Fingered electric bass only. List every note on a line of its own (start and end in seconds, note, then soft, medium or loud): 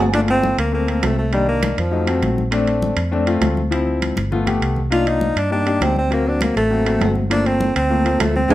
0.00 0.53 G1 loud
0.58 1.00 D2 medium
1.03 1.72 C2 medium
1.78 2.20 F2 medium
2.22 2.92 A#1 medium
2.96 3.39 F2 medium
3.41 4.11 D2 medium
4.16 4.58 G1 medium
4.61 5.31 C2 medium
5.36 5.78 G2 medium
5.80 6.50 D2 medium
6.56 6.98 A1 medium
7.01 7.70 G1 medium
7.76 8.17 D2 loud
8.20 8.48 D2 medium
8.49 8.54 D2 medium